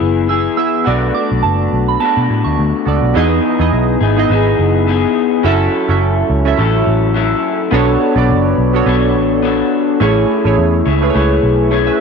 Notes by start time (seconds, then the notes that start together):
Already playing: E3 B3 E4 G#4 E5
0.01 F#1
0.28 E3 B3 E4 G#4 E6
0.57 B3 E4 G#4 E5 E6
0.84 B1 B2 A3 B3 D4 F#4 A4 D5
1.14 A3 D4 F#4 D6
1.32 B1
1.43 F#1 A5
1.73 B1
1.88 B5
2.00 B2 A3 D4 A5
2.05 F#4
2.17 B2
2.30 A2
2.44 D2 C#6
2.59 D2
2.85 C#2 B3 F#4 A4 D5
3.03 B1
3.14 E2 E3 B3 D#4 E4 G#4 D#5
3.59 E2 B3 D#4 E4 G#4 D#5
3.73 B1
4.00 G#1 B3 D#4 G#4
4.17 B3 D#4 E4 G#4 D#5
4.30 G#1 E3 B3 D#4 G#4
4.59 F#1
4.87 E3 B3 D#4 G#4
5.43 F#1 F#3 C#4 E4 F#4 A4 E5
5.47 A4
5.88 F#1 C#4 E4 F#4 A4 E5
6.30 C#2
6.45 C#4 E4 F#4 A4 E5
6.57 A1 F#3 C#4 E4 A4
6.87 A1
7.14 F#3 C#4 E4 A4 E5
7.71 B1 B3 D4 F#4 A4 C#5
7.75 C#5
8.16 B1 B3 D4 F#4 A4 D5
8.30 F#1
8.58 B1
8.73 B3 D4 F#4 A4 C#5
8.86 B1 B3 D4 A4 C#5
9.15 A1
9.42 B3 D4 A4 C#5
10.00 A1 A3 C#4 E4 G#4 C#5
10.44 A1 A3 C#4 E4 G#4 C#5
10.58 E2
10.85 C#2 E4 G#4 C#5
11.01 A3 C#4 E4 G#4 B4
11.10 C#5
11.14 C#2 A3 E4 G#4 C#5
11.43 B1
11.71 A3 E4 G#4 C#5
11.87 B4 E5